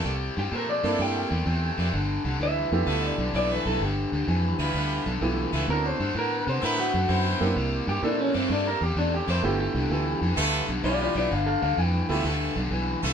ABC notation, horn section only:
X:1
M:4/4
L:1/8
Q:"Swing" 1/4=128
K:Gmix
V:1 name="Horn section"
[A,_B,DEA] z2 [A,B,DEA]2 z2 [A,B,DEA] | z4 [A,B,EFA] z [A,B,EFA]2 | z3 [G,B,EFG]2 z2 [A,B,EFA] | z4 [B,CE^FB] z [CEc]2 |
z3 [A,_B,DEA]2 z2 [G,B,DEG] | z4 [A,B,EFA] z [G,B,EFG]2 | z3 [A,B,EFA]2 z2 [A,B,EFA] |]